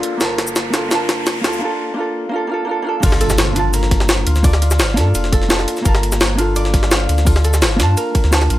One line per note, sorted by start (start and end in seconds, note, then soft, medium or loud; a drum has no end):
0.00 0.16 A#3 medium
0.00 0.18 D4 medium
0.00 0.19 F4 medium
0.00 0.73 F4 medium
0.00 0.19 A4 medium
0.00 0.27 A4 loud
0.00 0.64 D5 medium
0.00 0.81 F5 medium
0.00 closed hi-hat medium
0.00 riser medium
0.17 1.43 G1 loud
0.17 0.69 A#3 medium
0.17 0.21 D4 medium
0.17 0.91 A#4 medium
0.17 snare medium
0.17 closed hi-hat medium
0.17 cabasa soft
0.22 0.72 F4 medium
0.22 0.73 A5 loud
0.38 snare medium
0.38 closed hi-hat medium
0.47 cabasa medium
0.56 snare medium
0.56 closed hi-hat medium
0.56 cabasa soft
0.70 0.87 A#3 medium
0.70 0.89 D4 medium
0.70 1.44 F4 medium
0.70 snare medium
0.70 closed hi-hat medium
0.70 cabasa soft
0.75 0.90 F4 medium
0.75 0.91 A4 medium
0.88 1.40 A#3 loud
0.88 1.41 D4 medium
0.88 3.03 A#4 medium
0.88 snare medium
0.88 closed hi-hat medium
0.88 cabasa soft
0.93 1.43 F4 medium
0.93 1.44 A5 loud
1.09 snare medium
1.09 closed hi-hat medium
1.27 snare medium
1.27 closed hi-hat medium
1.27 cabasa soft
1.41 1.62 D2 medium
1.41 1.57 A#3 medium
1.41 1.60 D4 medium
1.41 3.03 F4 medium
1.41 snare medium
1.41 closed hi-hat medium
1.45 1.61 F4 medium
1.45 1.62 A4 medium
1.53 cabasa soft
1.59 1.93 A#3 medium
1.59 1.95 D4 medium
1.63 1.96 F4 medium
1.63 1.97 A4 loud
1.94 2.28 A#3 loud
1.94 2.30 D4 medium
1.98 2.32 F4 medium
1.98 2.33 A4 loud
2.29 2.46 A#3 loud
2.29 2.48 D4 loud
2.33 2.49 F4 medium
2.33 2.50 A4 loud
2.47 2.64 A#3 loud
2.47 2.66 D4 medium
2.51 2.67 F4 loud
2.51 2.68 A4 loud
2.65 2.81 A#3 loud
2.65 2.83 D4 medium
2.69 2.85 F4 medium
2.69 2.86 A4 loud
2.82 2.99 A#3 loud
2.82 3.01 D4 loud
2.87 3.02 F4 loud
2.87 3.03 A4 loud
3.00 4.25 G1 loud
3.00 3.52 A#3 loud
3.00 3.53 D4 medium
3.00 3.38 F4 medium
3.00 kick loud
3.00 closed hi-hat medium
3.00 crash loud
3.00 ride medium
3.00 impact medium
3.00 cabasa soft
3.04 3.54 F4 medium
3.04 3.56 A4 loud
3.12 snare soft
3.21 3.80 A4 loud
3.21 closed hi-hat medium
3.21 ride medium
3.30 snare soft
3.30 cabasa medium
3.38 4.26 F4 medium
3.38 snare loud
3.38 closed hi-hat medium
3.38 ride medium
3.38 cabasa soft
3.53 4.41 A#3 medium
3.53 4.42 D4 medium
3.53 closed hi-hat medium
3.53 ride medium
3.53 cabasa soft
3.57 4.43 F4 medium
3.57 4.44 A5 medium
3.74 5.38 A#4 medium
3.74 closed hi-hat medium
3.74 ride medium
3.74 cabasa medium
3.83 snare soft
3.91 kick loud
3.91 snare soft
3.91 closed hi-hat loud
3.91 ride medium
4.00 snare medium
4.00 snare soft
4.09 snare loud
4.09 closed hi-hat medium
4.09 ride medium
4.09 cabasa soft
4.27 4.81 D2 medium
4.27 4.61 F4 medium
4.27 closed hi-hat loud
4.27 ride medium
4.36 snare medium
4.36 cabasa soft
4.43 4.49 A#3 medium
4.43 4.50 D4 medium
4.43 4.50 F4 medium
4.43 4.51 A4 medium
4.43 6.29 D5 medium
4.43 kick loud
4.43 closed hi-hat medium
4.43 open hi-hat medium
4.43 cabasa soft
4.53 snare soft
4.62 5.14 F4 medium
4.62 closed hi-hat medium
4.62 ride medium
4.71 snare soft
4.71 cabasa medium
4.79 4.99 G1 medium
4.79 6.46 F5 medium
4.79 snare loud
4.79 closed hi-hat medium
4.79 ride medium
4.79 cabasa soft
4.89 snare soft
4.94 5.13 G2 medium
4.94 5.47 A#3 medium
4.94 5.48 D4 medium
4.94 snare medium
4.94 closed hi-hat loud
4.94 ride medium
4.94 cabasa soft
4.98 5.49 F4 medium
4.98 5.50 A4 loud
5.15 5.66 F1 medium
5.15 5.50 F4 medium
5.15 closed hi-hat medium
5.15 ride medium
5.15 cabasa soft
5.24 snare soft
5.32 5.91 A4 loud
5.32 kick loud
5.32 closed hi-hat medium
5.32 ride medium
5.42 snare soft
5.48 5.81 A#3 loud
5.48 5.83 D4 medium
5.48 6.38 F4 medium
5.48 5.84 F4 medium
5.48 5.84 A4 loud
5.48 snare loud
5.48 closed hi-hat medium
5.48 ride medium
5.48 cabasa soft
5.59 snare soft
5.68 closed hi-hat medium
5.68 ride medium
5.77 snare soft
5.77 cabasa soft
5.82 7.08 G1 medium
5.82 6.34 A#3 loud
5.82 5.86 D4 medium
5.82 7.50 A#4 medium
5.82 kick loud
5.82 closed hi-hat medium
5.82 ride medium
5.82 cabasa soft
5.86 6.37 F4 medium
5.86 6.38 A5 loud
5.95 snare soft
6.03 closed hi-hat medium
6.03 ride medium
6.12 snare soft
6.12 cabasa medium
6.21 snare loud
6.21 closed hi-hat medium
6.21 ride medium
6.21 cabasa soft
6.35 7.23 A#3 medium
6.35 7.24 D4 medium
6.35 6.73 F4 medium
6.35 closed hi-hat loud
6.35 ride medium
6.35 cabasa soft
6.40 7.25 F4 medium
6.40 7.26 A4 medium
6.56 8.41 D5 medium
6.56 closed hi-hat medium
6.56 ride medium
6.56 cabasa soft
6.65 snare medium
6.74 7.26 F4 medium
6.74 kick loud
6.74 snare soft
6.74 closed hi-hat medium
6.74 ride medium
6.83 snare medium
6.83 snare soft
6.91 8.58 F5 medium
6.91 snare loud
6.91 closed hi-hat medium
6.91 ride medium
6.91 cabasa soft
7.09 7.63 D2 medium
7.09 closed hi-hat medium
7.09 ride medium
7.18 snare soft
7.18 cabasa soft
7.25 7.31 A#3 medium
7.25 7.32 D4 medium
7.25 7.62 F4 medium
7.25 7.32 F4 medium
7.25 7.33 A4 medium
7.25 kick loud
7.25 closed hi-hat medium
7.25 open hi-hat medium
7.25 cabasa soft
7.36 snare soft
7.44 8.03 A4 loud
7.44 closed hi-hat medium
7.44 ride medium
7.44 cabasa soft
7.53 snare soft
7.53 cabasa medium
7.62 7.81 G1 medium
7.62 8.50 F4 medium
7.62 snare loud
7.62 closed hi-hat medium
7.62 ride medium
7.62 cabasa soft
7.71 snare soft
7.76 7.96 G2 medium
7.76 8.29 A#3 medium
7.76 8.30 D4 medium
7.76 snare loud
7.76 closed hi-hat medium
7.76 ride medium
7.76 cabasa soft
7.81 8.31 F4 medium
7.81 8.32 A5 loud
7.97 8.59 A#4 medium
7.97 closed hi-hat medium
7.97 ride medium
7.97 cabasa soft
8.15 kick loud
8.15 closed hi-hat medium
8.15 ride medium
8.24 8.49 D2 loud
8.24 snare soft
8.31 8.59 A#3 medium
8.31 8.59 D4 medium
8.31 8.59 F4 medium
8.31 8.59 A5 medium
8.31 snare loud
8.31 closed hi-hat medium
8.31 cabasa soft
8.41 snare soft
8.41 ride medium
8.50 8.59 A#1 loud
8.50 8.59 F4 medium
8.50 closed hi-hat medium
8.50 ride medium